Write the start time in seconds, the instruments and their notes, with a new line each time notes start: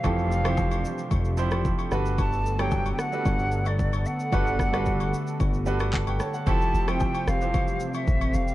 Already playing: analog synth pad C3 G3 A3 G4, grand piano E3 F3 C4 E4 G4 A4, flute F5
0.03 analog synth bass F1, grand piano E3 F3 C4 G4 A4, analog synth pad D4, kick, high agogo, shaker
0.18 shaker
0.32 shaker
0.44 grand piano E3 F3 C4 G4 C5, cross-stick, high agogo, shaker
0.57 kick, low woodblock, shaker
0.71 high agogo, shaker
0.85 shaker
0.98 shaker
1.11 analog synth bass F1, kick, high agogo, shaker
1.25 shaker
1.37 grand piano F3 C4 E4 G4 C5, shaker
1.51 cross-stick, high agogo, shaker
1.65 kick, shaker
1.79 high agogo, shaker
1.91 analog synth bass G1, analog synth pad D3 B3 A4, grand piano G3 D4 F#4 A4 B4, cross-stick, shaker
2.06 shaker
2.18 flute A5, kick, high agogo, shaker
2.33 shaker
2.46 shaker
2.58 grand piano F#3 G3 D4 A4 C#5, flute G5, cross-stick, high agogo, shaker
2.71 kick, low woodblock, shaker
2.86 high agogo, shaker
2.93 flute G5
2.99 flute F#5, cross-stick, shaker
3.12 grand piano G3 D4 F#4 A4 B4, shaker
3.25 analog synth bass G1, kick, high agogo, shaker
3.39 shaker
3.52 shaker
3.65 flute D5, high agogo, shaker
3.79 kick, shaker
3.93 high agogo, shaker
4.06 flute F#5, shaker
4.20 shaker
4.32 analog synth bass G1, grand piano G3 D4 F#4 A4 B4, kick, high agogo, shaker
4.47 shaker
4.59 kick, cross-stick, shaker
4.73 grand piano G3 D4 F#4 A4 B4, cross-stick, high agogo, shaker
4.86 kick, shaker
5.00 high agogo, shaker
5.13 shaker
5.27 shaker
5.40 analog synth bass G1, kick, high agogo, shaker
5.53 shaker
5.66 grand piano G3 D4 F#4 A4 B4, shaker
5.80 cross-stick, high agogo, shaker
5.93 grand piano A4 F#5, kick, clap, low woodblock, shaker
6.07 grand piano B4 G5, high agogo, shaker
6.20 grand piano C#5 A5, cross-stick, shaker
6.34 grand piano A4 F#5, shaker
6.46 log drum bass F1, analog synth pad C3 G3 C4 G4, grand piano F3 C4 E4 G4 A4, flute A5, kick, high agogo, shaker
6.61 shaker
6.74 log drum bass F1, shaker
6.87 grand piano F3 C4 E4 G4 C5, flute G5, cross-stick, high agogo, shaker
7.00 kick, low woodblock, shaker
7.14 high agogo, shaker
7.27 log drum bass F1, flute F5, cross-stick, shaker
7.41 grand piano E3 F3 C4 G4 C5, shaker
7.54 kick, high agogo, shaker
7.68 shaker
7.80 shaker
7.94 flute E5, high agogo, shaker
8.08 log drum bass A1, kick, shaker
8.22 high agogo, shaker
8.34 log drum bass F1, flute F5, shaker
8.48 shaker